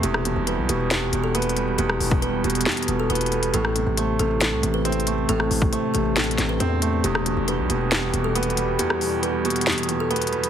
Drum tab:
HH |x-----------x-----------x-----------x-----------x-----------x-----------x---x---x---x-----------|x-----------o-----------x-----------x--x--x--x--x--x--x--x--x-----------x--x--x--x--x-----x-----|x-----------x-----------x-----------x-----------x-----------x-----------x---x---x---x-----------|x-----------o-----------x-----------x-----------x---x---x---x-----------x-----------x-----------|
SD |------r-----------------------------------------o-----------------------------------------------|------r-----------------------------------------o-----------------------------------------------|------r-----------------------------------------o-----------------------------------------------|------r-----------------------------------------o-----------o-----------------------------------|
BD |------------------------------------------------------------------------------------------------|------------------o-----------------------------------------------------------------------------|------------------------------------------------------------------------------------------------|------------------o-----------------------------------------------------------------------------|

HH |x-----------x-----------x-----------x-----------x-----------x-----------x---x---x---x-----------|x-----------o-----------x-----------x--x--x--x--x--x--x--x--x-----------x--x--x--x--x-----x-----|
SD |------r-----------------------------------------o-----------------------------------------------|------r-----------------------------------------o-----------------------------------------------|
BD |------------------------------------------------------------------------------------------------|------------------------------------------------------------------------------------------------|